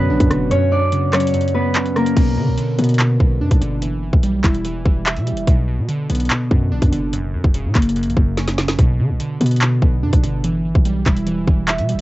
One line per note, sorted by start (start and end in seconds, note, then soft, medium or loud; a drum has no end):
0.00 0.11 F#2 loud
0.00 0.53 B2 medium
0.00 0.29 D3 loud
0.00 0.50 D3 medium
0.00 2.13 F#3 medium
0.00 0.47 B3 medium
0.00 0.51 B3 medium
0.00 1.54 B3 medium
0.00 0.51 C#4 medium
0.00 2.13 F#4 loud
0.00 1.54 B4 medium
0.00 0.50 C#5 medium
0.10 0.20 A#1 loud
0.10 0.51 D4 loud
0.20 0.30 F#2 loud
0.20 kick loud
0.20 closed hi-hat medium
0.30 0.51 F#1 loud
0.30 0.51 D3 medium
0.30 cross-stick medium
0.30 closed hi-hat medium
0.51 0.70 F#2 loud
0.51 0.78 C#4 medium
0.51 0.78 C#5 medium
0.51 closed hi-hat medium
0.71 1.33 F#2 medium
0.71 1.19 D4 medium
0.71 1.19 D5 medium
0.92 1.95 C#3 medium
0.92 closed hi-hat medium
1.13 2.17 F#3 medium
1.13 4.04 C#4 medium
1.13 3.04 C#5 medium
1.13 cross-stick loud
1.13 clap medium
1.13 closed hi-hat medium
1.20 closed hi-hat medium
1.27 closed hi-hat medium
1.34 1.53 F#2 medium
1.34 closed hi-hat medium
1.41 closed hi-hat medium
1.48 closed hi-hat soft
1.54 2.17 F#2 medium
1.54 2.02 B3 medium
1.54 2.02 B4 medium
1.75 2.17 C#4 loud
1.75 clap loud
1.75 closed hi-hat medium
1.86 closed hi-hat medium
1.96 2.17 C#3 medium
1.96 5.18 A#3 medium
1.96 4.08 A#4 medium
1.96 cross-stick medium
1.96 closed hi-hat medium
2.06 closed hi-hat medium
2.17 2.39 B1 loud
2.17 2.37 B2 loud
2.17 kick loud
2.17 closed hi-hat medium
2.17 crash medium
2.37 2.98 B2 medium
2.37 2.49 D3 loud
2.48 2.57 B1 loud
2.58 3.61 D3 medium
2.58 closed hi-hat medium
2.78 3.18 B2 loud
2.78 3.82 B3 medium
2.78 closed hi-hat medium
2.84 closed hi-hat medium
2.89 closed hi-hat medium
2.94 closed hi-hat soft
2.99 3.19 B2 medium
2.99 clap loud
2.99 closed hi-hat medium
3.20 3.42 B1 loud
3.20 3.82 B2 medium
3.20 kick medium
3.41 3.51 F#2 loud
3.41 3.82 D4 medium
3.51 3.61 B1 loud
3.51 kick medium
3.51 closed hi-hat medium
3.61 4.11 G1 loud
3.61 3.82 D3 medium
3.61 closed hi-hat medium
3.82 4.01 E3 medium
3.82 closed hi-hat medium
4.03 4.64 E3 medium
4.13 4.43 B1 loud
4.13 kick medium
4.23 5.26 G3 medium
4.23 closed hi-hat medium
4.44 4.84 E1 loud
4.44 5.48 E4 medium
4.44 kick medium
4.44 clap medium
4.44 closed hi-hat medium
4.55 closed hi-hat soft
4.65 4.84 E3 medium
4.65 closed hi-hat medium
4.85 5.18 E1 loud
4.85 5.48 E3 medium
4.85 kick loud
5.06 5.48 E5 medium
5.06 clap loud
5.06 closed hi-hat medium
5.17 5.33 B2 loud
5.17 closed hi-hat soft
5.27 5.48 G3 medium
5.27 closed hi-hat medium
5.32 5.47 E1 medium
5.37 closed hi-hat medium
5.47 5.80 B1 loud
5.47 5.67 B2 medium
5.47 kick loud
5.47 closed hi-hat medium
5.68 6.29 B2 medium
5.79 5.88 B2 loud
5.89 6.91 D3 medium
5.89 closed hi-hat medium
6.10 6.29 B1 loud
6.10 7.13 B3 medium
6.10 closed hi-hat medium
6.15 closed hi-hat medium
6.20 closed hi-hat medium
6.25 closed hi-hat soft
6.30 6.50 B2 medium
6.30 clap loud
6.30 closed hi-hat medium
6.51 6.73 F#2 loud
6.51 7.13 B2 medium
6.51 kick medium
6.72 6.82 A#1 loud
6.72 7.13 D4 medium
6.82 6.92 F#2 loud
6.82 kick loud
6.82 closed hi-hat medium
6.92 7.35 F#1 loud
6.92 7.13 D3 medium
6.92 closed hi-hat medium
7.13 7.32 F#2 loud
7.13 closed hi-hat medium
7.34 7.95 F#2 medium
7.34 7.44 F#2 loud
7.44 7.66 E1 loud
7.44 kick loud
7.54 8.57 C#3 medium
7.54 closed hi-hat medium
7.65 7.75 A#2 loud
7.75 8.08 F#1 loud
7.75 8.79 A#3 medium
7.75 kick medium
7.75 clap medium
7.75 closed hi-hat medium
7.82 closed hi-hat medium
7.89 closed hi-hat medium
7.96 8.15 F#2 medium
7.96 closed hi-hat medium
8.03 8.16 A#1 loud
8.03 closed hi-hat medium
8.10 closed hi-hat soft
8.16 8.76 F#1 loud
8.16 8.79 F#2 medium
8.16 kick medium
8.37 8.79 C#4 loud
8.37 snare medium
8.37 closed hi-hat medium
8.47 snare medium
8.47 closed hi-hat medium
8.58 8.79 C#3 medium
8.58 snare medium
8.58 closed hi-hat medium
8.68 snare medium
8.68 closed hi-hat medium
8.79 9.01 B1 loud
8.79 8.98 B2 loud
8.79 kick loud
8.79 closed hi-hat medium
8.99 9.60 B2 medium
8.99 9.11 D3 loud
9.10 9.19 B1 loud
9.20 10.23 D3 medium
9.20 closed hi-hat medium
9.40 9.80 B2 loud
9.40 10.44 B3 medium
9.40 closed hi-hat medium
9.46 closed hi-hat medium
9.51 closed hi-hat medium
9.56 closed hi-hat soft
9.61 9.81 B2 medium
9.61 clap loud
9.61 closed hi-hat medium
9.82 10.04 B1 loud
9.82 10.44 B2 medium
9.82 kick loud
10.03 10.13 F#2 loud
10.03 10.44 D4 medium
10.13 10.23 B1 loud
10.13 kick loud
10.13 closed hi-hat medium
10.23 10.73 G1 medium
10.23 10.44 D3 medium
10.23 closed hi-hat medium
10.44 10.64 E3 medium
10.44 closed hi-hat medium
10.65 11.26 E3 medium
10.75 11.05 B1 loud
10.75 kick medium
10.85 11.88 G3 medium
10.85 closed hi-hat medium
11.06 11.46 E1 loud
11.06 12.01 E4 medium
11.06 kick medium
11.06 clap medium
11.06 closed hi-hat medium
11.17 closed hi-hat soft
11.27 11.46 E3 loud
11.27 closed hi-hat medium
11.47 11.80 E1 loud
11.47 12.01 E3 medium
11.47 kick medium
11.68 12.01 E5 medium
11.68 clap loud
11.68 closed hi-hat medium
11.78 11.96 B2 loud
11.78 closed hi-hat soft
11.89 12.01 G3 medium
11.89 closed hi-hat medium
11.94 12.01 E1 medium